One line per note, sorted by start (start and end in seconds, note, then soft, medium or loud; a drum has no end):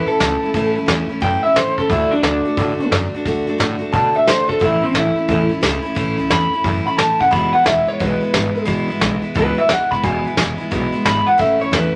0.07 0.19 A3 soft
0.07 0.20 C#4 soft
0.07 0.19 E4 soft
0.07 1.07 A4 loud
0.07 muted upright bass stroke medium
0.19 0.39 C#2 medium
0.19 0.42 E3 medium
0.19 0.42 A3 medium
0.19 0.43 C#4 medium
0.19 0.41 E4 medium
0.19 snare loud
0.42 0.54 A3 soft
0.42 0.55 C#4 medium
0.42 0.54 E4 medium
0.42 muted upright bass stroke medium
0.54 0.73 A1 loud
0.54 0.76 A2 loud
0.54 0.76 E3 loud
0.54 0.77 A3 loud
0.54 0.76 C#4 loud
0.54 0.74 E4 loud
0.54 kick loud
0.54 open hi-hat medium
0.75 0.86 C#2 medium
0.75 0.87 A3 soft
0.75 0.87 C#4 medium
0.75 0.88 E4 medium
0.86 1.07 E2 medium
0.86 1.09 E3 medium
0.86 1.10 A3 medium
0.86 1.09 C#4 medium
0.86 1.08 E4 medium
0.86 snare loud
1.09 1.20 A3 soft
1.09 1.22 C#4 medium
1.09 1.22 E4 medium
1.09 muted upright bass stroke medium
1.20 1.41 F#2 medium
1.20 1.43 A2 medium
1.20 1.44 E3 medium
1.20 1.44 A3 medium
1.20 1.44 C#4 medium
1.20 1.43 E4 medium
1.20 1.42 G5 loud
1.20 kick loud
1.20 open hi-hat medium
1.43 1.55 A3 soft
1.43 1.57 C#4 soft
1.43 1.56 E4 medium
1.43 1.55 E5 medium
1.55 1.74 A2 medium
1.55 1.78 E3 medium
1.55 1.78 A3 medium
1.55 1.78 C#4 medium
1.55 1.76 E4 medium
1.55 1.77 C5 medium
1.55 snare loud
1.55 open hi-hat medium
1.78 1.88 A2 medium
1.78 1.89 A3 soft
1.78 1.90 C#4 soft
1.78 1.90 E4 soft
1.78 1.90 A4 medium
1.78 kick medium
1.89 2.09 D2 medium
1.89 2.12 D3 medium
1.89 2.12 A3 medium
1.89 2.12 D4 loud
1.89 2.11 E4 medium
1.89 2.11 F#4 medium
1.89 kick loud
1.89 open hi-hat medium
2.11 2.21 D4 medium
2.11 2.25 D4 medium
2.11 2.24 F#4 medium
2.11 muted upright bass stroke medium
2.15 2.24 A3 soft
2.22 2.42 D2 medium
2.22 2.46 D3 medium
2.22 2.47 A3 medium
2.22 2.89 D4 loud
2.22 2.46 D4 medium
2.22 snare loud
2.27 2.44 F#4 medium
2.45 2.57 A3 soft
2.45 2.58 D4 soft
2.45 2.57 F#4 medium
2.45 muted upright bass stroke medium
2.57 2.76 A2 loud
2.57 2.80 D3 medium
2.57 2.80 A3 medium
2.57 2.81 D4 medium
2.57 2.79 F#4 medium
2.57 kick loud
2.57 open hi-hat medium
2.79 2.91 A3 medium
2.79 2.92 D4 medium
2.79 2.92 F#4 medium
2.79 muted upright bass stroke medium
2.91 3.10 F#2 medium
2.91 3.14 D3 medium
2.91 3.14 A3 medium
2.91 3.14 D4 medium
2.91 3.13 F#4 medium
2.91 snare loud
2.91 open hi-hat soft
3.13 3.26 D4 medium
3.13 3.26 F#4 medium
3.13 muted upright bass stroke medium
3.18 3.25 A3 medium
3.25 3.44 D2 loud
3.25 3.48 D3 medium
3.25 3.48 A3 loud
3.25 3.47 D4 loud
3.25 3.46 F#4 loud
3.25 kick loud
3.25 open hi-hat medium
3.47 3.58 F#2 medium
3.47 3.57 A3 soft
3.47 3.59 D4 medium
3.47 3.59 F#4 medium
3.58 3.78 A2 medium
3.58 3.81 D3 medium
3.58 3.81 A3 medium
3.58 3.80 D4 medium
3.58 3.78 F#4 medium
3.58 snare loud
3.79 3.92 A3 soft
3.79 3.93 D4 medium
3.79 3.92 F#4 medium
3.79 muted upright bass stroke medium
3.92 4.12 B2 medium
3.92 4.15 D3 medium
3.92 4.15 A3 medium
3.92 4.15 D4 loud
3.92 4.13 F#4 medium
3.92 4.14 A5 loud
3.92 kick loud
3.92 open hi-hat medium
4.14 4.26 A3 soft
4.14 4.27 D4 soft
4.14 4.27 F#4 medium
4.14 4.27 E5 medium
4.14 muted upright bass stroke medium
4.26 4.46 D3 medium
4.26 4.49 D3 medium
4.26 4.49 A3 medium
4.26 4.48 D4 medium
4.26 4.47 F#4 medium
4.26 4.48 C5 medium
4.26 snare loud
4.48 4.60 D3 medium
4.48 4.60 A3 soft
4.48 4.61 D4 medium
4.48 4.61 F#4 medium
4.48 4.61 A4 loud
4.48 kick medium
4.60 4.80 A1 loud
4.60 4.83 A2 medium
4.60 4.83 E3 medium
4.60 4.83 A3 loud
4.60 4.81 C#4 medium
4.60 4.83 E4 loud
4.60 4.80 E4 loud
4.60 kick loud
4.60 open hi-hat medium
4.81 4.93 A3 soft
4.81 4.95 C4 medium
4.81 4.94 C#4 medium
4.81 4.94 E4 soft
4.81 muted upright bass stroke medium
4.93 5.13 A1 medium
4.93 5.16 E3 medium
4.93 5.17 A3 medium
4.93 5.16 C#4 medium
4.93 5.62 E4 loud
4.93 5.14 E4 medium
4.93 snare loud
5.16 5.28 A3 soft
5.16 5.29 C#4 soft
5.16 5.29 E4 medium
5.16 muted upright bass stroke medium
5.28 5.48 E2 loud
5.28 5.51 A2 medium
5.28 5.51 E3 medium
5.28 5.51 A3 medium
5.28 5.50 C#4 medium
5.28 5.48 E4 medium
5.28 kick loud
5.28 open hi-hat medium
5.49 5.61 A3 medium
5.49 5.62 C#4 medium
5.49 5.62 E4 medium
5.49 muted upright bass stroke medium
5.61 5.82 C#2 medium
5.61 5.84 E3 medium
5.61 5.84 A3 medium
5.61 5.83 C#4 medium
5.61 5.81 E4 medium
5.61 snare loud
5.82 5.95 A3 medium
5.82 5.95 C#4 medium
5.82 5.96 E4 medium
5.95 6.16 A1 loud
5.95 6.18 A2 loud
5.95 6.19 E3 loud
5.95 6.19 A3 loud
5.95 6.18 C#4 loud
5.95 6.16 E4 loud
5.95 kick loud
5.95 open hi-hat medium
6.17 6.29 C#2 medium
6.17 6.30 A3 medium
6.17 6.31 C#4 medium
6.17 6.30 E4 medium
6.30 6.50 E2 medium
6.30 6.52 E3 medium
6.30 6.53 A3 medium
6.30 6.53 C#4 medium
6.30 6.52 E4 medium
6.30 6.64 B5 loud
6.30 snare loud
6.53 6.64 A3 soft
6.53 6.65 C#4 soft
6.53 6.65 E4 medium
6.53 muted upright bass stroke medium
6.64 6.83 F#2 medium
6.64 6.87 A2 medium
6.64 6.87 E3 medium
6.64 6.87 A3 medium
6.64 6.87 C#4 medium
6.64 6.85 E4 medium
6.64 kick loud
6.64 open hi-hat medium
6.86 6.97 A3 soft
6.86 6.98 C#4 medium
6.86 6.98 E4 medium
6.86 6.97 B5 medium
6.97 7.17 A2 medium
6.97 7.20 E3 medium
6.97 7.20 A3 medium
6.97 7.19 C#4 medium
6.97 7.18 E4 medium
6.97 7.20 A5 loud
6.97 snare loud
7.19 7.31 A2 medium
7.19 7.31 A3 soft
7.19 7.31 C#4 soft
7.19 7.31 E4 soft
7.19 7.32 F#5 medium
7.19 kick medium
7.30 7.51 E1 medium
7.30 7.54 E2 medium
7.30 7.54 B2 medium
7.30 7.54 E3 loud
7.30 7.52 G#3 medium
7.30 7.52 B3 medium
7.30 7.51 E4 loud
7.30 7.53 B5 medium
7.30 kick loud
7.30 open hi-hat medium
7.52 7.63 E3 soft
7.52 7.64 G#3 medium
7.52 7.64 B3 medium
7.52 7.66 E4 medium
7.52 7.65 F#5 medium
7.52 muted upright bass stroke medium
7.64 7.85 E1 medium
7.64 7.87 E3 medium
7.64 7.88 G#3 medium
7.64 7.87 B3 medium
7.64 7.86 E4 medium
7.64 7.87 E5 medium
7.64 snare loud
7.87 7.99 E3 soft
7.87 8.00 G#3 medium
7.87 7.99 B3 medium
7.87 8.00 E4 soft
7.87 8.01 C#5 loud
7.87 muted upright bass stroke medium
8.00 8.19 B1 medium
8.00 8.22 E2 medium
8.00 8.22 B2 medium
8.00 8.22 E3 medium
8.00 8.22 G#3 medium
8.00 8.21 B3 medium
8.00 8.19 E4 medium
8.00 8.67 B4 loud
8.00 kick loud
8.00 open hi-hat medium
8.21 8.33 E3 soft
8.21 8.33 G#3 soft
8.21 8.34 B3 medium
8.21 8.34 E4 medium
8.33 8.53 G#1 medium
8.33 8.56 E3 medium
8.33 8.56 G#3 medium
8.33 8.55 B3 medium
8.33 8.54 E4 medium
8.33 snare loud
8.55 8.65 E3 medium
8.55 8.66 G#3 medium
8.55 8.66 B3 medium
8.55 8.66 E4 medium
8.65 8.87 E1 loud
8.65 8.89 E2 loud
8.65 8.89 B2 loud
8.65 8.89 E3 loud
8.65 8.89 G#3 loud
8.65 8.88 B3 loud
8.65 8.87 E4 loud
8.65 kick loud
8.65 open hi-hat medium
8.88 9.00 G#1 medium
8.88 8.99 E3 soft
8.88 9.00 G#3 medium
8.88 9.01 B3 medium
8.88 9.01 E4 medium
9.00 9.20 B1 loud
9.00 9.23 E3 medium
9.00 9.23 G#3 medium
9.00 9.22 B3 medium
9.00 9.21 E4 medium
9.00 snare loud
9.22 9.34 E3 soft
9.22 9.34 G#3 medium
9.22 9.35 B3 medium
9.22 9.35 E4 medium
9.22 muted upright bass stroke medium
9.34 9.55 C#2 loud
9.34 9.57 E2 medium
9.34 9.58 B2 medium
9.34 9.58 E3 medium
9.34 9.58 G#3 medium
9.34 9.57 B3 medium
9.34 9.56 E4 loud
9.34 9.58 B4 loud
9.34 kick loud
9.34 open hi-hat medium
9.57 9.68 E3 soft
9.57 9.69 G#3 medium
9.57 9.70 B3 medium
9.57 9.69 E4 medium
9.57 9.70 E5 loud
9.69 9.89 E2 medium
9.69 9.91 E3 medium
9.69 9.92 G#3 medium
9.69 9.92 B3 medium
9.69 9.91 F#5 loud
9.69 snare loud
9.91 10.02 E2 medium
9.91 10.03 E3 soft
9.91 10.03 G#3 soft
9.91 10.04 B3 medium
9.91 10.04 E4 medium
9.91 10.04 B5 medium
9.91 kick medium
10.03 10.22 E1 loud
10.03 10.25 E2 medium
10.03 10.26 B2 medium
10.03 10.26 E3 medium
10.03 10.26 G#3 medium
10.03 10.25 B3 loud
10.03 10.23 E4 medium
10.03 10.70 G#5 loud
10.03 kick loud
10.03 open hi-hat medium
10.25 10.36 E3 soft
10.25 10.37 G#3 medium
10.25 10.38 B3 medium
10.25 10.37 E4 medium
10.25 muted upright bass stroke medium
10.36 10.56 E1 loud
10.36 10.59 E3 medium
10.36 10.59 G#3 medium
10.36 10.58 B3 medium
10.36 10.57 E4 medium
10.36 snare loud
10.58 10.70 E3 soft
10.58 10.71 G#3 medium
10.58 10.71 B3 medium
10.58 10.71 E4 medium
10.58 muted upright bass stroke medium
10.71 10.90 B1 medium
10.71 10.93 E2 loud
10.71 10.93 B2 loud
10.71 10.93 E3 medium
10.71 10.93 G#3 medium
10.71 10.92 B3 loud
10.71 10.91 E4 loud
10.71 kick loud
10.71 open hi-hat medium
10.92 11.03 E3 medium
10.92 11.04 G#3 medium
10.92 11.05 B3 medium
10.92 11.05 E4 medium
11.05 11.24 G#1 medium
11.05 11.27 E3 medium
11.05 11.27 G#3 medium
11.05 11.26 B3 medium
11.05 11.24 E4 medium
11.05 11.27 B5 loud
11.05 snare loud
11.05 open hi-hat medium
11.26 11.37 E3 soft
11.26 11.39 G#3 medium
11.26 11.39 B3 medium
11.26 11.39 E4 medium
11.26 11.39 F#5 loud
11.38 11.58 A1 loud
11.38 11.61 A2 loud
11.38 11.61 E3 medium
11.38 11.61 A3 medium
11.38 11.60 C#4 medium
11.38 11.59 E4 loud
11.38 11.60 E5 medium
11.38 kick loud
11.38 open hi-hat medium
11.60 11.71 C#2 medium
11.60 11.71 A3 soft
11.60 11.72 C#4 soft
11.60 11.73 E4 medium
11.60 11.73 C#5 loud
11.71 11.91 E2 medium
11.71 11.94 E3 medium
11.71 11.95 A3 medium
11.71 11.95 C#4 medium
11.71 11.93 E4 medium
11.71 11.94 B4 loud
11.71 snare loud
11.71 open hi-hat soft